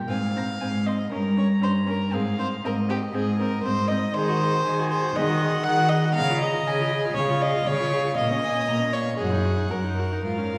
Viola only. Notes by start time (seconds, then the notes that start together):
0.10 C4
0.36 C4
0.61 C4
0.86 C4
1.11 C#4
1.37 C#4
1.61 C#4
1.87 C#4
2.12 C4
2.39 C4
2.64 C4
2.88 C4
3.14 C4
3.40 C4
3.65 C4
3.91 C4
4.15 G#4
4.29 F#4
4.41 G#4
4.53 F#4
4.65 G#4
4.79 F#4
4.91 G#4
5.03 F#4
5.16 G#4
5.29 F#4
5.41 G#4
5.54 F#4
5.66 G#4
5.79 F#4
5.91 G#4
6.04 F#4
6.16 G#4
6.30 F4
6.41 G#4
6.54 F4
6.67 G#4
6.80 F4
6.92 G#4
7.05 F4
7.18 G#4
7.29 F4
7.43 G#4
7.55 F4
7.68 G#4
7.80 F4
7.92 G#4
8.05 F4
8.18 A#3
8.31 C#4
8.42 A#3
8.55 C#4
8.68 A#3
8.79 C#4
8.93 A#3
9.07 C#4
9.20 F#4
9.32 D#4
9.45 F#4
9.57 D#4
9.72 F#4
9.84 D#4
9.99 F#4
10.12 D#4
10.26 F4
10.39 C#4
10.53 F4